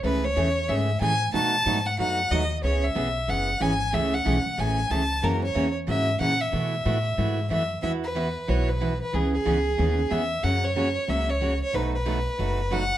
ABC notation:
X:1
M:4/4
L:1/16
Q:"Swing" 1/4=185
K:E
V:1 name="Fiddle"
B2 c6 e4 g4 | a6 f2 f4 d3 z | c2 e6 f4 g4 | e2 f6 g4 a4 |
^A2 c4 z2 e4 f2 e2- | e12 e4 | e2 B6 c2 B4 B2 | G2 G8- G2 e4 |
f2 c6 e2 c4 c2 | B2 B8- B2 f4 |]
V:2 name="Steel-string acoustic guitar"
[C,E,A,CG]2 z2 [C,E,A,CG]2 z2 [C,E,A,CG]2 z2 [C,E,A,CG]2 z2 | [B,,F,A,DF]2 z2 [B,,F,A,DF]2 z2 [B,,F,A,DF]2 z2 [B,,F,A,DF]2 z2 | [C,E,B,CG]2 z2 [C,E,B,CG]2 z2 [C,E,B,CG]2 z2 [C,E,B,CG]2 z2 | [C,E,A,CG]2 z2 [C,E,A,CG]2 z2 [C,E,A,CG]2 z2 [C,E,A,CG]2 z2 |
[C,E,^A,CF]2 z2 [C,E,A,CF]2 z2 [C,E,A,CF]2 z2 [C,E,A,CF]2 z2 | [B,,E,A,EF]2 z2 [B,,E,A,EF]2 z2 [B,,E,A,EF]2 z2 [B,,E,A,EF]2 z2 | [E,B,EFB]2 z2 [E,B,EFB]2 z2 [E,B,EFB]2 z2 [E,B,EFB]2 z2 | [C,E,B,CG]2 z2 [C,E,B,CG]2 z2 [C,E,B,CG]2 z2 [C,E,B,CG]2 z2 |
[C,F,^A,CF]2 z2 [C,F,A,CF]2 z2 [C,F,A,CF]2 z2 [C,F,A,CF]2 z2 | [B,,F,A,DF]2 z2 [B,,F,A,DF]2 z2 [B,,F,A,DF]2 z2 [B,,F,A,DF]2 z2 |]
V:3 name="Upright bass" clef=bass
C,,4 E,,4 G,,4 A,,4 | B,,4 G,,4 F,,4 D,,4 | C,,4 B,,,4 F,,,4 G,,,4 | C,,4 B,,,2 z2 A,,,4 C,,4 |
F,,4 E,,4 G,,4 ^A,,4 | B,,4 A,,4 G,,4 F,,4 | E,,8 B,,,8 | C,,4 C,,4 D,,4 E,,4 |
F,,8 C,,8 | B,,,8 F,,,8 |]